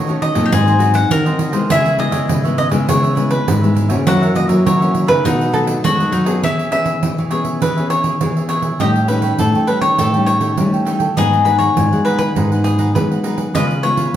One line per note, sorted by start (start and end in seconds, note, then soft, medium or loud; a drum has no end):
0.00 0.31 D#3 medium
0.00 0.50 D#3 medium
0.00 0.19 C#5 medium
0.00 0.41 D#5 loud
0.07 0.33 A3 medium
0.07 0.34 C#4 medium
0.07 0.34 F#4 medium
0.07 0.35 A4 medium
0.07 0.34 C#5 medium
0.07 0.32 D#5 medium
0.07 pandeiro soft
0.22 0.94 D#5 medium
0.22 pandeiro medium
0.34 0.49 A#2 medium
0.34 0.76 F#3 medium
0.34 0.76 C4 medium
0.34 0.76 D#4 medium
0.34 0.50 A4 medium
0.34 0.50 C#5 medium
0.34 0.49 D#5 medium
0.34 pandeiro medium
0.46 0.52 G4 medium
0.51 1.08 G#2 medium
0.51 1.03 G#2 loud
0.51 0.65 F#4 medium
0.51 0.66 G#4 medium
0.51 1.11 G#4 medium
0.51 0.66 C5 medium
0.51 0.65 D#5 medium
0.51 pandeiro medium
0.67 0.79 G#4 medium
0.67 0.79 C5 medium
0.67 0.80 D#5 medium
0.67 pandeiro soft
0.79 1.21 F#3 medium
0.79 1.21 C4 medium
0.79 1.21 D#4 medium
0.79 0.93 F#4 medium
0.79 0.93 G#4 medium
0.79 0.93 C5 medium
0.79 0.94 D#5 medium
0.79 pandeiro medium
0.94 1.37 F#5 medium
0.94 muted cavaquinho stroke soft
0.94 pandeiro medium
1.11 1.67 D#3 medium
1.11 1.53 D#3 medium
1.11 1.66 A#4 loud
1.11 pandeiro medium
1.25 1.51 F#3 medium
1.25 1.52 C4 medium
1.25 1.52 D#4 medium
1.25 1.38 G#4 medium
1.25 1.38 C5 medium
1.25 1.39 D#5 medium
1.25 pandeiro soft
1.38 1.53 F#4 medium
1.38 1.53 G#4 medium
1.38 1.52 C5 medium
1.38 1.51 D#5 medium
1.38 pandeiro medium
1.52 1.67 C3 medium
1.52 1.94 G#3 medium
1.52 1.94 B3 medium
1.52 1.95 E4 medium
1.52 1.69 G#4 medium
1.52 1.68 C5 medium
1.52 1.68 D#5 medium
1.52 pandeiro medium
1.69 2.26 C#3 medium
1.69 2.08 C#3 medium
1.69 1.83 E4 medium
1.69 4.14 G#4 medium
1.69 1.84 B4 medium
1.69 1.84 C#5 medium
1.69 1.99 E5 loud
1.69 pandeiro medium
1.84 1.97 B4 medium
1.84 1.97 C#5 medium
1.84 1.98 E5 medium
1.84 pandeiro soft
1.98 2.39 G#3 medium
1.98 2.39 B3 medium
1.98 2.39 E4 medium
1.98 2.55 D#5 loud
1.98 muted cavaquinho stroke soft
1.98 pandeiro medium
2.11 2.26 C#3 medium
2.11 2.27 B4 medium
2.11 2.27 C#5 medium
2.11 2.26 E5 medium
2.11 pandeiro medium
2.28 2.86 G#2 medium
2.28 2.67 C#3 medium
2.28 2.42 E4 medium
2.28 2.43 B4 medium
2.28 2.43 C#5 medium
2.28 2.42 E5 medium
2.28 pandeiro medium
2.43 2.70 G#3 medium
2.43 2.70 B3 medium
2.43 2.70 E4 medium
2.43 2.71 B4 medium
2.43 2.70 C#5 medium
2.43 2.68 E5 medium
2.43 pandeiro soft
2.58 2.66 D#5 medium
2.58 pandeiro medium
2.69 2.85 C#3 medium
2.69 3.12 G#3 medium
2.69 3.13 B3 medium
2.69 3.13 E4 medium
2.69 2.87 B4 medium
2.69 2.86 C#5 medium
2.69 2.85 E5 medium
2.69 pandeiro medium
2.87 3.39 C#3 medium
2.87 3.45 C#3 medium
2.87 3.01 E4 medium
2.87 3.02 B4 medium
2.87 3.02 C#5 medium
2.87 3.30 C#5 medium
2.87 3.01 E5 medium
2.87 pandeiro medium
3.03 3.14 B4 medium
3.03 3.15 C#5 medium
3.03 3.16 E5 medium
3.03 pandeiro soft
3.15 3.45 G#3 medium
3.15 3.46 B3 medium
3.15 3.28 E4 medium
3.15 3.46 E4 medium
3.15 3.28 B4 medium
3.15 3.28 C#5 medium
3.15 3.29 E5 medium
3.15 pandeiro medium
3.29 3.73 B4 medium
3.29 muted cavaquinho stroke soft
3.29 pandeiro medium
3.48 3.92 G#2 loud
3.48 4.04 G#2 medium
3.48 pandeiro loud
3.61 3.88 G#3 medium
3.61 3.88 B3 medium
3.61 3.88 E4 medium
3.61 3.74 B4 medium
3.61 3.75 C#5 medium
3.61 3.75 E5 medium
3.61 pandeiro soft
3.74 3.90 E4 soft
3.74 3.89 B4 medium
3.74 3.88 C#5 medium
3.74 3.87 E5 medium
3.74 pandeiro medium
3.88 4.03 C#3 medium
3.88 4.31 E3 medium
3.88 4.31 A#3 medium
3.88 4.31 C#4 medium
3.88 4.05 B4 medium
3.88 4.04 C#5 medium
3.88 4.04 E5 medium
3.88 pandeiro medium
4.06 4.63 F#2 medium
4.06 4.45 F#3 medium
4.06 4.20 F#4 soft
4.06 5.25 F#4 medium
4.06 4.20 A#4 soft
4.06 4.21 C#5 medium
4.06 4.20 E5 medium
4.06 4.35 F#5 loud
4.06 pandeiro medium
4.22 4.34 A#4 medium
4.22 4.34 C#5 medium
4.22 4.34 E5 medium
4.22 pandeiro soft
4.34 4.76 E3 medium
4.34 4.76 A#3 medium
4.34 4.76 C#4 medium
4.34 4.44 D#5 loud
4.34 muted cavaquinho stroke soft
4.34 pandeiro medium
4.48 4.63 F#3 medium
4.48 4.64 A#4 medium
4.48 4.64 C#5 medium
4.48 4.63 E5 medium
4.48 pandeiro medium
4.65 5.22 C#3 medium
4.65 5.04 F#3 medium
4.65 4.79 F#4 soft
4.65 4.80 A#4 soft
4.65 5.08 C#5 medium
4.65 4.80 C#5 medium
4.65 4.79 E5 medium
4.65 pandeiro medium
4.80 5.06 E3 medium
4.80 5.06 A#3 medium
4.80 5.07 C#4 medium
4.80 5.07 A#4 medium
4.80 5.06 C#5 medium
4.80 5.05 E5 medium
4.80 pandeiro soft
4.95 pandeiro medium
5.07 5.22 C#3 medium
5.07 5.49 F#3 medium
5.07 5.49 A3 medium
5.07 5.49 D#4 medium
5.07 5.23 A#4 medium
5.07 5.79 B4 medium
5.07 5.23 C#5 medium
5.07 5.22 E5 medium
5.07 pandeiro medium
5.24 5.82 B2 medium
5.24 5.76 B2 medium
5.24 5.38 D#4 soft
5.24 5.86 D#4 medium
5.24 5.38 A4 medium
5.24 5.39 B4 medium
5.24 5.38 D#5 medium
5.24 pandeiro medium
5.40 5.51 A4 medium
5.40 5.52 B4 medium
5.40 5.53 D#5 medium
5.40 pandeiro soft
5.52 5.82 F#3 medium
5.52 5.82 A3 medium
5.52 5.65 D#4 medium
5.52 5.82 D#4 medium
5.52 5.65 A4 medium
5.52 5.85 A4 medium
5.52 5.66 B4 medium
5.52 5.66 D#5 medium
5.52 pandeiro medium
5.66 muted cavaquinho stroke soft
5.66 pandeiro medium
5.84 6.41 F#2 medium
5.84 6.11 G#3 medium
5.84 6.15 F#4 medium
5.84 6.40 C#5 medium
5.84 pandeiro medium
5.99 6.25 F#3 medium
5.99 6.25 A3 medium
5.99 6.25 D#4 medium
5.99 6.11 A4 medium
5.99 6.12 B4 medium
5.99 6.13 D#5 medium
5.99 pandeiro soft
6.11 6.40 F#3 medium
6.11 6.26 D#4 soft
6.11 6.41 D#4 medium
6.11 6.26 A4 medium
6.11 6.25 B4 medium
6.11 6.24 D#5 medium
6.11 pandeiro medium
6.25 6.67 B3 medium
6.25 6.68 C#4 medium
6.25 6.68 G#4 medium
6.25 6.41 A4 medium
6.25 6.41 B4 medium
6.25 6.40 D#5 medium
6.25 pandeiro medium
6.42 6.94 E3 medium
6.42 7.00 E3 medium
6.42 6.70 E4 medium
6.42 8.88 E4 medium
6.42 6.70 G#4 medium
6.42 6.71 C#5 medium
6.42 6.71 E5 medium
6.42 6.72 E5 medium
6.42 pandeiro medium
6.59 pandeiro soft
6.71 7.11 B3 medium
6.71 7.11 C#4 medium
6.71 6.83 E4 soft
6.71 6.84 G#4 soft
6.71 7.11 G#4 medium
6.71 6.84 C#5 medium
6.71 7.34 E5 medium
6.71 6.85 E5 medium
6.71 pandeiro medium
6.84 6.95 E4 medium
6.84 6.96 G#4 medium
6.84 6.96 C#5 medium
6.84 6.96 E5 medium
6.84 pandeiro medium
7.03 7.59 B2 medium
7.03 7.16 E3 medium
7.03 pandeiro medium
7.17 7.56 E3 medium
7.17 7.30 G#4 soft
7.17 7.30 C#5 soft
7.17 7.31 E5 soft
7.17 pandeiro soft
7.30 7.60 B3 soft
7.30 7.60 C#4 soft
7.30 7.45 E4 medium
7.30 7.45 G#4 medium
7.30 7.60 G#4 medium
7.30 7.62 C#5 medium
7.30 7.44 C#5 medium
7.30 7.43 E5 medium
7.30 pandeiro medium
7.44 7.60 G#4 soft
7.44 7.60 C#5 soft
7.44 7.59 E5 soft
7.44 pandeiro soft
7.60 8.12 E3 medium
7.60 7.75 E4 medium
7.60 7.75 G#4 medium
7.60 7.90 B4 medium
7.60 7.76 C#5 medium
7.60 7.75 E5 medium
7.60 pandeiro medium
7.76 8.17 B3 medium
7.76 8.17 C#4 medium
7.76 8.02 G#4 soft
7.76 8.18 G#4 medium
7.76 8.03 C#5 soft
7.76 8.03 E5 medium
7.76 pandeiro soft
7.90 8.46 C#5 medium
7.90 pandeiro medium
8.03 8.14 E4 medium
8.03 8.14 G#4 medium
8.03 8.14 C#5 medium
8.03 8.14 E5 medium
8.03 pandeiro medium
8.21 8.78 B2 medium
8.21 8.72 E3 medium
8.21 8.60 B3 soft
8.21 8.60 C#4 soft
8.21 8.60 G#4 medium
8.21 pandeiro medium
8.36 8.49 G#4 soft
8.36 8.49 C#5 soft
8.36 8.50 E5 soft
8.36 pandeiro soft
8.49 8.64 E4 medium
8.49 8.63 G#4 medium
8.49 8.80 C#5 medium
8.49 8.62 C#5 medium
8.49 8.61 E5 medium
8.49 pandeiro medium
8.62 8.79 G#4 soft
8.62 8.78 C#5 soft
8.62 8.78 E5 soft
8.62 pandeiro medium
8.79 9.31 A2 medium
8.79 9.37 A2 medium
8.79 8.98 G3 soft
8.79 8.98 C#4 medium
8.79 8.98 D#4 medium
8.79 9.06 G4 medium
8.79 9.99 G4 medium
8.79 9.07 A4 medium
8.79 9.08 C#5 medium
8.79 8.88 D#5 medium
8.79 9.09 G5 medium
8.79 pandeiro medium
8.96 pandeiro soft
9.08 9.64 G3 medium
9.08 9.64 C#4 medium
9.08 9.65 D#4 medium
9.08 9.21 G4 soft
9.08 9.21 A4 medium
9.08 9.40 B4 medium
9.08 9.21 C#5 medium
9.08 9.22 G5 soft
9.08 pandeiro medium
9.22 9.32 G4 medium
9.22 9.33 A4 medium
9.22 9.33 C#5 medium
9.22 9.33 G5 medium
9.22 pandeiro medium
9.38 9.52 A2 medium
9.38 9.96 E3 medium
9.38 9.67 A4 medium
9.38 pandeiro medium
9.54 9.93 A3 medium
9.54 9.67 A4 soft
9.54 9.68 C#5 soft
9.54 9.68 G5 medium
9.54 pandeiro soft
9.67 10.09 G3 soft
9.67 10.09 C#4 medium
9.67 10.09 D#4 medium
9.67 9.82 G4 medium
9.67 9.82 A4 medium
9.67 9.81 B4 medium
9.67 9.81 C#5 medium
9.67 9.80 G5 medium
9.67 pandeiro medium
9.81 9.97 A4 soft
9.81 10.24 C#5 medium
9.81 9.97 C#5 soft
9.81 9.96 G5 soft
9.81 pandeiro medium
9.98 10.58 A2 medium
9.98 10.56 A2 medium
9.98 10.12 G4 medium
9.98 10.13 A4 medium
9.98 11.14 A4 medium
9.98 10.13 C#5 medium
9.98 10.13 G5 medium
9.98 pandeiro medium
10.14 10.54 G3 medium
10.14 10.55 C#4 medium
10.14 10.55 D#4 medium
10.14 10.40 A4 soft
10.14 10.40 C#5 soft
10.14 10.40 G5 soft
10.14 pandeiro soft
10.26 11.13 C#5 medium
10.26 pandeiro medium
10.40 10.51 G4 medium
10.40 10.51 A4 medium
10.40 10.51 C#5 medium
10.40 10.51 G5 medium
10.40 pandeiro medium
10.57 11.15 E3 medium
10.57 10.83 G3 soft
10.57 11.09 A3 medium
10.57 10.84 C#4 medium
10.57 10.84 D#4 medium
10.57 pandeiro medium
10.73 10.85 A4 soft
10.73 10.86 C#5 soft
10.73 10.86 G5 soft
10.73 pandeiro soft
10.85 11.05 G3 medium
10.85 11.05 C#4 medium
10.85 11.06 D#4 soft
10.85 11.00 G4 medium
10.85 11.00 A4 medium
10.85 10.99 C#5 medium
10.85 10.98 G5 medium
10.85 pandeiro medium
10.99 11.16 A4 soft
10.99 11.15 C#5 soft
10.99 11.15 G5 soft
10.99 pandeiro medium
11.16 11.68 G#2 medium
11.16 11.74 G#2 medium
11.16 11.43 F#3 medium
11.16 11.43 B3 medium
11.16 11.44 D#4 medium
11.16 11.43 D#4 medium
11.16 11.44 G#4 medium
11.16 13.62 G#4 medium
11.16 11.45 B4 medium
11.16 11.48 D#5 medium
11.16 11.45 F#5 medium
11.16 pandeiro medium
11.33 pandeiro soft
11.45 12.02 F#3 soft
11.45 12.02 B3 medium
11.45 11.57 D#4 medium
11.45 12.02 D#4 medium
11.45 11.58 G#4 soft
11.45 11.58 B4 medium
11.45 11.58 F#5 medium
11.45 pandeiro medium
11.58 11.69 D#4 medium
11.58 11.70 G#4 medium
11.58 11.70 B4 medium
11.58 12.04 C#5 medium
11.58 11.70 F#5 medium
11.58 pandeiro medium
11.77 11.90 G#2 medium
11.77 pandeiro medium
11.92 12.30 G#3 medium
11.92 12.04 G#4 soft
11.92 12.05 B4 soft
11.92 12.05 F#5 medium
11.92 pandeiro soft
12.04 12.34 F#3 medium
12.04 12.34 B3 soft
12.04 12.19 D#4 medium
12.04 12.34 D#4 medium
12.04 12.20 G#4 medium
12.04 12.17 B4 medium
12.04 12.19 B4 medium
12.04 12.17 F#5 medium
12.04 pandeiro medium
12.18 12.35 G#4 soft
12.18 12.64 B4 loud
12.18 12.34 B4 soft
12.18 12.34 F#5 soft
12.18 pandeiro medium
12.35 12.96 G#2 medium
12.35 12.93 G#2 soft
12.35 12.49 D#4 medium
12.35 12.50 G#4 medium
12.35 12.50 B4 medium
12.35 12.50 F#5 medium
12.35 pandeiro medium
12.52 12.92 F#3 medium
12.52 12.92 B3 medium
12.52 12.92 D#4 medium
12.52 12.78 G#4 soft
12.52 12.78 B4 soft
12.52 12.78 F#5 medium
12.52 pandeiro soft
12.64 12.93 G#4 medium
12.64 pandeiro medium
12.78 12.89 D#4 medium
12.78 12.89 G#4 medium
12.78 12.89 B4 medium
12.78 12.89 F#5 medium
12.78 pandeiro medium
12.95 13.52 D#3 soft
12.95 13.21 F#3 medium
12.95 13.46 G#3 medium
12.95 13.21 B3 medium
12.95 13.21 D#4 medium
12.95 13.57 B4 medium
12.95 pandeiro medium
13.11 13.23 G#4 soft
13.11 13.24 B4 soft
13.11 13.24 F#5 soft
13.11 pandeiro soft
13.23 13.50 F#3 soft
13.23 13.50 B3 soft
13.23 13.38 D#4 medium
13.23 13.50 D#4 medium
13.23 13.38 G#4 medium
13.23 13.37 B4 medium
13.23 13.36 F#5 medium
13.23 pandeiro medium
13.37 13.53 G#4 soft
13.37 13.53 B4 soft
13.37 13.52 F#5 soft
13.37 pandeiro medium
13.54 14.05 C#3 medium
13.54 14.12 C#3 medium
13.54 13.73 G#3 medium
13.54 13.73 B3 medium
13.54 13.81 F4 medium
13.54 13.73 F4 medium
13.54 13.82 B4 medium
13.54 14.16 B4 loud
13.54 13.83 C#5 medium
13.54 13.63 D#5 medium
13.54 13.83 F5 medium
13.54 pandeiro medium
13.71 pandeiro soft
13.83 14.16 G#3 medium
13.83 14.16 B3 medium
13.83 13.95 F4 soft
13.83 14.16 F4 medium
13.83 13.96 B4 soft
13.83 14.16 C#5 medium
13.83 13.96 C#5 medium
13.83 13.97 F5 medium
13.83 pandeiro medium
13.97 14.07 F4 medium
13.97 14.07 B4 medium
13.97 14.08 C#5 medium
13.97 14.08 F5 medium
13.97 pandeiro medium